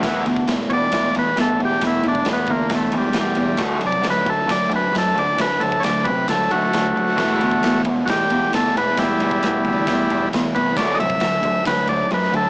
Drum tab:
CC |----------------|----------------|----------------|----------------|
RD |x-x-x-x-x-x-x-x-|x-x-x-x-x-x-x-x-|x-x-x-x-x-x-x-x-|x-x-x-x-x-x-x-x-|
SD |o---o---o---o---|o---o---o---o---|o---o---o---o---|o---o---o---o---|
BD |o--o--o-o-------|o--o--o-o-------|o--o--o-o-------|o--o--o-o-------|

CC |x---------------|----------------|----------------|
RD |--x-x-x-x-x-x-x-|x-x-x-x-x-x-x-x-|x-x-x-x-x-x-x-x-|
SD |o---o---o---o---|o---o---o---o---|o---o---o---o---|
BD |o--o--o-o-------|o--o--o-o-------|o--o--o-o-------|